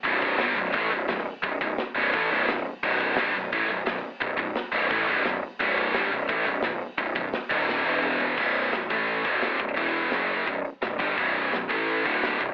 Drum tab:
CC |----------------|----------------|x---------------|----------------|
HH |o-o-o-o---o-o-o-|o-o-o-o-o-o---o-|--o-o-o---o-o-o-|--o-o-o-o-o-o-o-|
SD |----o-------oo--|----o-------oo--|----o-------oo--|----o-------o---|
T2 |----------------|----------------|----------------|----------------|
FT |----------------|----------------|----------------|----------------|
BD |o-o-----o-------|o-o-----o-------|o-o-----o-------|o-o-----o-------|

CC |----------------|------x---------|x---------------|----------------|
HH |o---o-o---o-o-o-|o-o-o-----------|--o-o---o-o-o---|o-o-o-o-o-o-o-o-|
SD |----o-------o---|----o---o-------|----o-------o---|----o-------o---|
T2 |----------------|------------o---|----------------|----------------|
FT |----------------|--------------o-|----------------|----------------|
BD |o-o-----o-------|o-o---o---------|o-----o---o---o-|o-------o-----o-|

CC |----------------|
HH |o-o-o-o-o-o-o-o-|
SD |----o-------o---|
T2 |----------------|
FT |----------------|
BD |o-----o---o---o-|